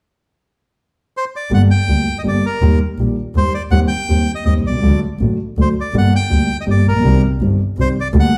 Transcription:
1.17 bandoneon C5
1.36 bandoneon D5
1.51 double bass G1, grand piano G1 G2 D3 G3 A#3 G4, bandoneon F#5
1.71 bandoneon G5
1.88 double bass D2, grand piano D2 D3 G3 A#3 G4
2.19 bandoneon D#5
2.24 grand piano G1 G2 D3 G3 A#3 G4, double bass G1
2.28 bandoneon D5
2.46 bandoneon A#4
2.61 double bass D#2, grand piano D#2 D#3 G3 A#3 G4
2.99 double bass A#1, grand piano A#1 A#2 D#3 G3 A#3 G4
3.35 double bass D#2, grand piano D#2 D#3 G3 A#3 G4, bandoneon C5
3.54 bandoneon D5
3.71 double bass D#2, grand piano D#2 D#3 G3 C4 G4, bandoneon F#5
3.88 bandoneon G5
4.09 double bass D#2, grand piano D#2 D#3 G3 C4 G4
4.35 bandoneon D#5
4.45 double bass D#2, grand piano D#2 D#3 G3 C4 G4, bandoneon D#5
4.63 double bass C2, bandoneon D5
4.69 grand piano B1
4.73 grand piano C2
4.79 grand piano C#2 D3, double bass D2
4.83 grand piano D2 F#3 A3 F#4
5.19 double bass A1, grand piano A1 A2 D3 F#3 A3 F#4
5.57 double bass D2, grand piano D2 D3 F#3 A3 F#4
5.61 bandoneon C5
5.81 bandoneon D5
5.93 double bass G1, grand piano G1 G2 D3 G3 A#3 G4
5.98 bandoneon F#5
6.16 bandoneon G5
6.30 grand piano D2 D3 G3 A#3 G4, double bass D2
6.61 bandoneon D#5
6.67 grand piano G1 G2 D3 G3 A#3 G4, double bass G1
6.71 bandoneon D5
6.85 double bass A#1, bandoneon A#4
6.90 grand piano A1
6.96 grand piano A#1 B1
7.04 double bass C2, grand piano C2 C3 D#3 G3 C4 G4
7.41 double bass G1, grand piano G1 G2 D#3 G3 C4 G4
7.77 double bass C2, grand piano C2 C3 D#3 G3 C4 G4, bandoneon C5
8.01 bandoneon D5
8.13 double bass D2, grand piano D2 D3 G3 A#3 G4
8.20 bandoneon F#5

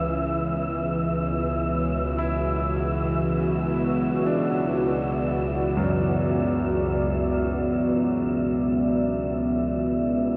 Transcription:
Already playing: synth drone C#2 E3, ambient pad B3, synth texture E5
0.81 ambient pad F#4
2.19 grand piano E4
2.63 ambient pad D5
4.27 grand piano D4
5.77 grand piano F#2
9.41 ambient pad E4

